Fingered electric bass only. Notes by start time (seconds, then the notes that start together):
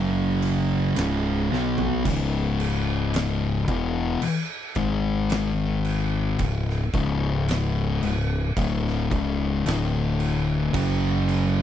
Already playing: F#1
0.97 C#1
1.51 B1
2.06 C#1
3.68 E1
4.21 muted fingered electric bass stroke
4.76 G#1
6.40 C#1
6.93 C#1
8.03 C#1
8.57 D1
9.11 C#1
9.66 D1
10.74 F#1